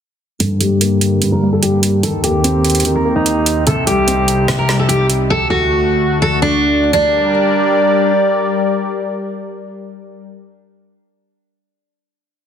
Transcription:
0.40 G2 D3 A#3 G4 A4, closed hi-hat
0.60 G3 G4, closed hi-hat
0.81 A#3, closed hi-hat
1.01 closed hi-hat
1.22 G2, closed hi-hat
1.32 A#4
1.42 G3
1.53 A4
1.63 G4, closed hi-hat
1.83 closed hi-hat
2.03 D#2 D#3 C4 A4, closed hi-hat
2.24 A#3 G4, closed hi-hat
2.44 C4, closed hi-hat
2.65 closed hi-hat
2.70 closed hi-hat
2.75 closed hi-hat
2.80 closed hi-hat
2.85 D#3, closed hi-hat
2.95 A#4
3.05 A#3
3.16 D#4
3.26 closed hi-hat
3.46 closed hi-hat
3.67 C2 C3 D#4 G4 A4, closed hi-hat
3.87 G3 G4, closed hi-hat
4.07 C4, closed hi-hat
4.28 closed hi-hat
4.48 C3, snare, closed hi-hat
4.59 A#4
4.69 G3, snare
4.79 A4
4.89 G4, closed hi-hat
5.10 closed hi-hat
5.30 D2 D3 A3 F#4 A4
5.50 F#4
6.22 A4
6.42 D4
6.93 G3 D4 G4 A#4 D5

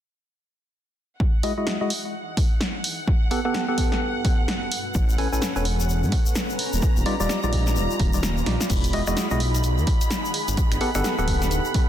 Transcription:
1.20 E3 F#5, kick
1.32 D#4
1.43 G#3 E4 F#4 D#5, open hi-hat
1.58 G#3 E4 F#4 D#5
1.67 snare
1.81 G#3 E4 F#4 D#5
1.90 open hi-hat
1.95 F#5
2.37 kick, open hi-hat
2.61 snare
2.84 G2, open hi-hat
3.08 kick
3.31 B3 G4 A4 F#5, open hi-hat
3.45 B3 G4 A4 F#5
3.54 snare
3.68 B3 G4 A4 F#5
3.78 kick, open hi-hat
3.92 snare
4.25 kick, open hi-hat
4.48 snare
4.71 C#4, open hi-hat
4.91 B4, shaker
4.95 A1, kick
5.09 shaker
5.18 C#4 A4 B4 G#5, open hi-hat
5.32 A1 C#4 A4 B4 G#5, shaker
5.42 snare, shaker
5.56 E1 C#4 A4 B4 G#5, shaker
5.65 open hi-hat
5.80 shaker
5.89 shaker
6.03 A2, shaker
6.12 kick, open hi-hat
6.26 shaker
6.35 snare, shaker
6.50 shaker
6.59 F4 A#5, open hi-hat
6.73 D#1, shaker
6.82 kick, shaker
6.97 D#1, shaker
7.06 G3 D#4 F4 D5, open hi-hat
7.20 D#1 G3 D#4 F4 D5, shaker
7.28 D5, snare, shaker
7.43 A#1 G3 D#4 F4 D5, shaker
7.51 G5, kick, open hi-hat
7.67 snare, shaker
7.76 D#1, shaker
7.90 shaker
8.00 D#1, kick, open hi-hat
8.13 G3 D#4 F4 D5, shaker
8.23 snare, shaker
8.37 shaker
8.46 A#1 G3 D#4 F4 D5, snare, open hi-hat
8.61 snare, shaker
8.70 E1 D#4 B5, kick, closed hi-hat, crash, shaker
8.84 G#4, closed hi-hat, shaker
8.93 G#3 E4 F#4 D#5, open hi-hat
9.07 E1 G#3 E4 F#4 D#5, finger snap, high bongo, shaker
9.17 F#5, snare, closed hi-hat, shaker
9.31 B1 G#3 E4 F#4 D#5, shaker
9.40 open hi-hat
9.55 closed hi-hat, shaker
9.63 closed hi-hat, shaker
9.78 E2, shaker
9.87 kick, open hi-hat
10.01 closed hi-hat, shaker
10.11 snare, closed hi-hat, shaker
10.25 shaker
10.34 B3, open hi-hat
10.48 G1, closed hi-hat, shaker
10.57 kick, closed hi-hat, shaker
10.72 G1, finger snap, closed hi-hat, shaker
10.81 B3 G4 A4 F#5, open hi-hat
10.95 G1 B3 G4 A4 F#5, finger snap, high bongo, shaker
11.04 snare, closed hi-hat, shaker
11.18 D1 B3 G4 A4 F#5, shaker
11.28 kick, open hi-hat
11.42 snare, closed hi-hat, shaker
11.51 closed hi-hat, shaker
11.65 shaker
11.74 kick, open hi-hat

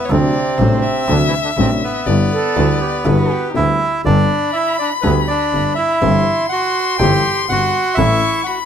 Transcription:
Already playing: B3 B4
0.05 C#5
0.10 D2 C3 D3 F#3 A3 C4 D4 D5
0.58 A1 A2 C3 F#3 A3 D4 C5
0.82 E5
1.08 D2 C3 D3 F#3 A3 D4
1.28 E3 E4
1.43 D3 D4
1.57 A1 A2 C3 F#3 A3 C4 D4
1.84 B3 B4
2.06 G1 G2 D3 G3 B3 E4 D5
2.32 A4
2.56 D2 D3 G3 B3 E4
2.81 G4
3.05 G1 G2 D3 G3 B3 E4 F#4 B4
3.31 G4
3.50 D3 D#4
3.55 D2 G3 B3 E4 E5
4.04 G1 G2 D3 G3 B3 D4 G4 D5 B5
4.53 E4 E5
4.79 D4 D5
5.02 D2 D3 G3 B3 G4 B4
5.28 D4 D5
5.53 G1 G2
5.75 E4 E5
6.01 G1 G2 E3 G3 C4 G4 C6
6.49 F#4 F#5
6.98 G1 G2 E3 G3 C4 G4 G5
7.49 G1 G2 F#4 F#5
7.95 A1 A2 E3 A3 E4 A4 E5 C#6
7.99 C#4
8.44 F#5 B5
8.48 F#4

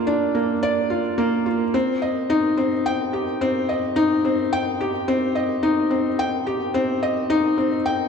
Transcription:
Already playing: A#3 D4 F4 D5
0.07 D4
0.35 A#3
0.63 D5
0.90 F4
1.18 A#3
1.46 F4
1.74 C4
2.02 D#5
2.30 D#4
2.57 C4
2.86 G5
3.13 G4
3.41 C4
3.69 D#5
3.96 D#4
4.25 C4
4.53 G5
4.81 G4
5.08 C4
5.35 D#5
5.63 D#4
5.90 C4
6.19 G5
6.47 G4
6.74 C4
7.03 D#5
7.30 D#4
7.58 C4
7.86 G5

